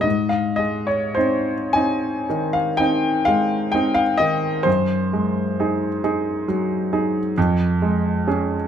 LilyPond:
\new Staff \with { instrumentName = "Grand piano" } { \time 9/8 \key des \lydian \tempo 4. = 43 << { ees''16 f''16 ees''16 des''16 c''8 aes''8. f''16 g''8 f''8 g''16 f''16 ees''8 | c''1 r8 | } \\ { aes,8 aes8 <c' ees'>8 <c' ees'>8 ees8 <c' ees'>8 aes8 <c' ees'>8 ees8 | ges,8 aes8 <ees' aes'>8 <ees' aes'>8 ges8 <ees' aes'>8 f,8 aes8 <des' aes'>8 | } >> }